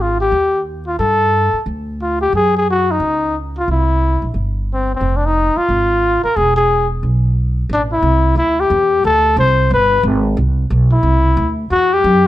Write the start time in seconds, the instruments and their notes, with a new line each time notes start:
Already playing: upright bass G#1
0.01 trumpet F4
0.21 trumpet G4
0.32 upright bass D#2
0.87 trumpet F4
0.99 upright bass G2, trumpet A4
1.53 muted upright bass stroke
1.66 upright bass D2
2.02 trumpet F4
2.21 trumpet G4
2.33 upright bass F#2, trumpet G#4
2.56 trumpet G#4
2.70 trumpet F#4
2.91 trumpet D#4
3.00 upright bass C#2
3.58 trumpet F4
3.68 upright bass C2, trumpet E4
4.22 upright bass A#1
4.34 upright bass G1
4.74 trumpet C4
4.95 trumpet C4
5.01 upright bass F1
5.16 trumpet D4
5.25 trumpet D#4
5.56 trumpet F4, muted upright bass stroke
5.69 upright bass G#1
6.24 trumpet A#4, muted upright bass stroke
6.36 upright bass E1, trumpet G#4
6.57 trumpet G#4
7.03 upright bass B1
7.69 upright bass A1, trumpet D4
7.92 trumpet E4
8.02 upright bass C2
8.36 upright bass D2, trumpet E4
8.60 trumpet G4
8.70 upright bass E2
9.04 upright bass D2, trumpet A4
9.37 upright bass C2, trumpet C5
9.70 upright bass G1, trumpet B4
10.03 upright bass G#1
10.37 upright bass C2
10.70 upright bass B1
10.92 trumpet E4
11.03 upright bass C2
11.37 upright bass D2
11.70 upright bass E2, trumpet F#4
11.94 trumpet G4
12.04 upright bass F#2